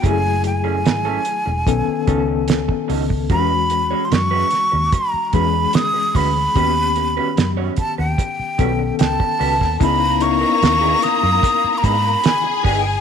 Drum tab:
HH |x-x-x-x-x-x-x-o-|x-x-x-x-x-x-x-o-|x-x-x-x-x-x-x-o-|x-x-x-x-x-x-x-o-|
SD |----o-------o---|----o-o-----o---|----o-------o--o|----o-o-----o---|
BD |o-------o-o--o-o|o-------o-o---o-|o-----o-o-o--o-o|o-------o-o---o-|